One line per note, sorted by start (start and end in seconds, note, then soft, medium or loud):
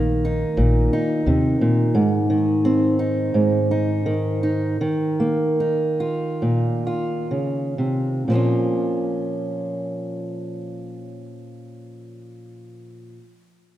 0.00 0.42 A#1 medium
0.00 2.28 D#3 medium
0.00 1.98 A#3 soft
0.00 1.96 F4 medium
0.25 0.93 D#4 soft
0.57 0.88 A#1 medium
0.57 1.26 A#2 medium
0.93 2.99 D#4 soft
1.26 1.56 D#2 medium
1.26 1.61 C3 soft
1.61 1.95 A#2 medium
1.95 3.33 G#2 medium
2.30 4.05 D#3 soft
2.65 4.77 C4 soft
2.99 3.70 D#4 soft
3.34 4.77 G#2 medium
3.71 4.42 D#4 soft
4.06 4.80 D#3 soft
4.43 4.76 D#4 soft
4.81 8.29 D#3 medium
5.20 8.23 A#3 soft
5.60 8.23 D#4 soft
6.00 6.85 F4 soft
6.42 7.30 A#2 soft
6.87 8.34 F4 soft
7.31 7.78 C#3 soft
7.78 8.27 C3 soft
8.28 13.17 A#2 soft
8.28 13.19 F3 soft
8.28 13.21 A#3 soft
8.33 13.23 C#4 soft
8.33 13.24 F4 soft